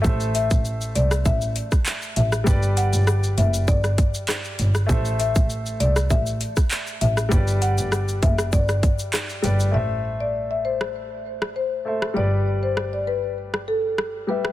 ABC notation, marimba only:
X:1
M:4/4
L:1/16
Q:1/4=99
K:Ador
V:1 name="Marimba"
z2 e z3 d z e3 z3 e z | z2 f z3 e z d3 z4 z | z2 e z3 d z e3 z3 e z | z2 f z3 e z d3 z4 z |
e z2 d z e c z4 z c3 z | d z2 c z d B z3 A z3 B z |]